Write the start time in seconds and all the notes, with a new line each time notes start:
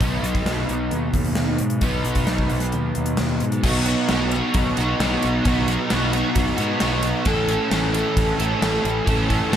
0.00 B1 B2 F#3 B3 D#4 F#4 B4, kick, closed hi-hat
0.23 B1, closed hi-hat
0.35 kick
0.46 B1, snare, closed hi-hat
0.69 B1, closed hi-hat
0.91 D#2, closed hi-hat
1.14 D#2, kick, closed hi-hat
1.24 closed hi-hat
1.35 D#2, snare, closed hi-hat
1.58 G#2, closed hi-hat
1.70 closed hi-hat
1.81 B1 B2 F#3 B3 D#4 F#4 B4, kick, closed hi-hat
2.05 B1, closed hi-hat
2.15 kick, closed hi-hat
2.27 B1, snare, closed hi-hat
2.38 kick
2.50 B1, closed hi-hat
2.60 snare, closed hi-hat
2.72 D#2, closed hi-hat
2.95 D#2, closed hi-hat
3.06 closed hi-hat
3.17 D#2, snare, closed hi-hat
3.40 G#2, closed hi-hat
3.52 closed hi-hat
3.63 B1 B2 F#3 B3 D#4 F#4, kick, crash
3.86 B3 D#4 F#4, ride
4.09 B1 B2 F#3 B3 D#4 F#4, snare, ride
4.31 D#4 F#4, ride
4.36 B3
4.54 B1, kick, ride
4.77 B1 B3 D#4 F#4, ride
4.99 B1 F#3 B3 D#4 F#4, snare, ride
5.22 B1, ride
5.45 B1 B2 F#3 B3 D#4 F#4, kick, ride
5.68 B3 D#4 F#4, ride
5.90 B1 B2 F#3 B3 D#4 F#4, snare, ride
6.13 B3 D#4 F#4, ride
6.35 B1, kick, ride
6.57 G#2 B3 D#4 F#4, ride
6.80 B1 F#3 B3 D#4 F#4, snare, ride
7.03 snare, ride
7.25 A1 A2 E3 A3 C#4 A4, kick, ride
7.48 A3 C#4 A4, ride
7.71 A1 A2 E3 A3 C#4 A4, snare, ride
7.92 A3 C#4 A4, ride
8.17 A1, kick, ride
8.38 A1 A3 C#4 A4, ride
8.59 A1 E3 A3 C#4 A4, snare, ride
8.85 A1, ride
9.05 A1 A2 E3 A3 C#4 A4, kick, ride
9.28 A3 C#4 A4, kick, ride
9.51 A1 A2 E3 A3 C#4 A4, snare, ride